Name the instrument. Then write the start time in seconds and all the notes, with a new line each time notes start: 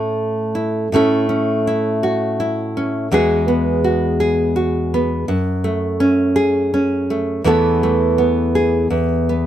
nylon-string guitar
Already playing: A2 A3 C#4 E4
0.55 E4
0.92 A2 A3 C#4 E4 A4
1.29 C#4
1.67 E4
2.03 F#4
2.40 E4
2.77 C#4
3.11 E2 G#3 B3 F#4 G#4
3.48 B3
3.84 F#4
4.20 G#4
4.56 F#4
4.94 B3
5.28 F#2
5.64 A3
6.00 C#4
6.36 G#4
6.74 C#4
7.10 A3
7.44 E2 E3 A3 B3 A4
7.83 A3
8.18 B3
8.55 G#4
8.90 E2
9.29 B3